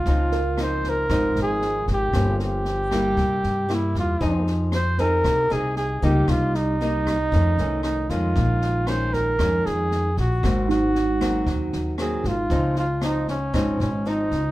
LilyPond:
<<
  \new Staff \with { instrumentName = "Tine electric piano" } { \time 4/4 \key des \major \tempo 4 = 116 r8 bes'2. r8 | r1 | r1 | r1 |
r1 | r8 ees'2. r8 | r1 | }
  \new Staff \with { instrumentName = "Flugelhorn" } { \time 4/4 \key des \major f'4 c''8 bes'4 aes'4 g'8~ | g'8 g'2~ g'8 e'8 f'8~ | f'8 r8 c''8 bes'4 aes'8 aes'8 g'8 | f'8 ees'2~ ees'8 ees'8 f'8~ |
f'4 c''8 bes'4 aes'4 ges'8~ | ges'8 ges'2 r8 aes'8 f'8~ | f'8 f'8 ees'8 des'4 des'8 ees'4 | }
  \new Staff \with { instrumentName = "Nylon-string guitar" } { \time 4/4 \key des \major << { <f c' ees'>8 r8 <f c' ees'>4 <f c' ees'>2 | <f bes des'>4. <g bes fes'>4. <g bes e'>4 | <c' ees' aes'>4 r8 <c' ees' aes'>4 <c' ees' aes'>4 <g bes ees'>8~ | <g bes ees'>4 <g bes ees'>8 r8 <ees a des'>8 <ees a des'>4 <ees aes des'>8~ |
<ees aes des'>4 <ees aes des'>4 <ees aes des'>4. r8 | <ges bes c'>4 r8 <ges bes c'>4. <ges bes c'>8 r8 | <f c' ees'>8 r8 <f c' ees'>8 r8 <f c' ees'>8 r8 <f c' ees'>8 r8 | } \\ { des2 aes,2 | g,2 c2 | f2 c2 | c2 f,2 |
bes,2 f,2 | aes,2 ees2 | des2 aes,2 | } >> }
  \new Staff \with { instrumentName = "Upright bass" } { \clef bass \time 4/4 \key des \major des,2 aes,,8 aes,,4 aes,,8 | g,,2 c,8 g,4 e,8 | f,2 c,8 c,4 des,8 | c,2 f,8 c,4 f,8 |
bes,,2 f,8 f,4 bes,,8 | aes,,2 ees,8 ees,4 aes,,8 | des,2 aes,,8 aes,,4 des,8 | }
  \new DrumStaff \with { instrumentName = "Drums" } \drummode { \time 4/4 <bd sn>8 sn8 <ss sn>8 <bd sn>8 <bd ss sn>8 sn8 sn8 <bd sn>8 | <bd ss sn>8 sn8 sn8 <bd ss sn>8 <bd sn>8 sn8 <ss sn>8 <bd sn>8 | <bd sn>8 sn8 <ss sn>8 <bd sn>8 <bd ss sn>8 sn8 sn8 <bd sn>8 | <bd ss sn>8 sn8 sn8 <bd ss sn>8 <bd sn>8 sn8 <ss sn>8 <bd sn>8 |
<bd sn>8 sn8 <ss sn>8 <bd sn>8 <bd ss sn>8 sn8 sn8 <bd sn>8 | <bd ss sn>8 sn8 sn8 <bd ss sn>8 <bd sn>8 sn8 <ss sn>8 <bd sn>8 | <bd sn>8 sn8 <ss sn>8 <bd sn>8 <bd ss sn>8 sn8 sn8 <bd sn>8 | }
>>